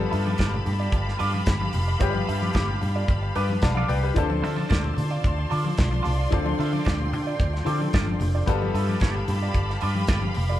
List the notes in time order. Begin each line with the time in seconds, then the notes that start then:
Already playing: G3 B3 F4 G4 A4 F5 A5 B5
0.00 muted clean electric guitar stroke
0.11 G2 B3 F4 A4 E5, open hi-hat, muted conga
0.25 B3 F4 A4 D5, high conga
0.38 G1 B3 F4 A4 D5, kick, snare, closed hi-hat
0.53 muted clean electric guitar stroke, low conga
0.65 G2, muted clean electric guitar stroke, open hi-hat, low conga
0.80 B3 F4 A4 D5
0.92 G1, kick, closed hi-hat, muted conga
1.07 muted clean electric guitar stroke, snare
1.19 G2 B3 F4 A4 D5, open hi-hat, muted conga
1.34 muted clean electric guitar stroke, high conga
1.46 G1, muted clean electric guitar stroke, kick, snare, closed hi-hat, muted conga
1.61 muted clean electric guitar stroke, high conga
1.73 F1, open hi-hat, low conga
1.88 muted clean electric guitar stroke
1.99 G1 G3 B3 F4 G4 A4 D5, kick, closed hi-hat
2.14 muted clean electric guitar stroke, high conga
2.27 G2 B3 F4 A4 E5, open hi-hat, muted conga
2.42 B3 F4 A4 D5, high conga
2.53 G1 B3 F4 A4 D5, kick, snare, closed hi-hat
2.69 muted clean electric guitar stroke, low conga
2.81 G2, muted clean electric guitar stroke, open hi-hat, muted conga, low conga
2.96 B3 F4 A4 D5
3.08 G1, kick, closed hi-hat
3.22 muted clean electric guitar stroke
3.35 G2 B3 F4 A4 B4 D5, open hi-hat, muted conga
3.50 muted clean electric guitar stroke, high conga
3.62 B1 D5 F5 A5, muted clean electric guitar stroke, kick, snare, closed hi-hat, muted conga
3.75 B3 F4 A4 D5 F5, high conga
3.88 C2 B4 D5 G5, open hi-hat, muted conga, low conga
4.03 G4 B4, muted clean electric guitar stroke
4.14 D2 F3 C4 D4 F4 A4 D5 A5 C6, kick, closed hi-hat
4.30 muted clean electric guitar stroke, high conga
4.42 D3 C4 F4 A4 E5, open hi-hat
4.56 C4 F4 A4 D5, high conga
4.69 D2 C4 F4 A4 D5, kick, snare, closed hi-hat, muted conga
4.84 muted clean electric guitar stroke, low conga
4.96 D3, muted clean electric guitar stroke, open hi-hat, low conga
5.11 C4 F4 A4 D5
5.24 D2, kick, closed hi-hat, muted conga
5.38 muted clean electric guitar stroke
5.50 D3 C4 F4 A4 D5, open hi-hat, muted conga
5.65 muted clean electric guitar stroke, high conga
5.77 B1, muted clean electric guitar stroke, kick, snare, closed hi-hat, muted conga
5.91 muted clean electric guitar stroke, high conga
6.03 C2 C4 F4 A4 D5, open hi-hat, muted conga, low conga
6.18 C4 F4 A4 D5
6.30 D2 F3 C4 D4 F4 A4 D5 G5, kick, closed hi-hat, muted conga
6.46 muted clean electric guitar stroke, high conga
6.59 D3 C4 F4 A4 E5, open hi-hat, muted conga
6.73 C4 F4 A4 D5, high conga
6.85 D2 C4 F4 A4 D5, kick, snare, closed hi-hat, muted conga
6.99 muted clean electric guitar stroke, low conga
7.12 D3, muted clean electric guitar stroke, open hi-hat, low conga
7.27 C4 F4 A4 D5
7.40 D2, kick, closed hi-hat, muted conga
7.54 muted clean electric guitar stroke, snare
7.65 D3 F3 C4 D4 F4 A4 D5, open hi-hat
7.80 muted clean electric guitar stroke, high conga
7.93 G1 C4 F4 A4 D5, kick, snare, closed hi-hat
8.07 muted clean electric guitar stroke, high conga
8.20 F1, muted clean electric guitar stroke, open hi-hat, muted conga, low conga
8.35 C4 F4 A4 D5
8.46 G1 G3 B3 F4 G4 A4 D5 F5 A5 B5, kick, closed hi-hat, muted conga
8.62 muted clean electric guitar stroke, high conga
8.74 G2 B3 F4 A4 E5, open hi-hat, muted conga
8.89 B3 F4 A4 D5, high conga
9.00 G1 B3 F4 A4 D5, kick, snare, closed hi-hat, muted conga
9.15 muted clean electric guitar stroke, low conga
9.28 G2, muted clean electric guitar stroke, open hi-hat, muted conga, low conga
9.43 B3 F4 A4 D5
9.54 G1, kick, closed hi-hat
9.70 muted clean electric guitar stroke, snare
9.81 G2 B3 F4 A4 D5, open hi-hat, muted conga
9.95 muted clean electric guitar stroke, high conga
10.07 G1 B3 F4 A4 D5, kick, snare, closed hi-hat, muted conga
10.22 muted clean electric guitar stroke, high conga
10.34 F1, muted clean electric guitar stroke, open hi-hat, muted conga, low conga
10.49 B3 F4 A4 D5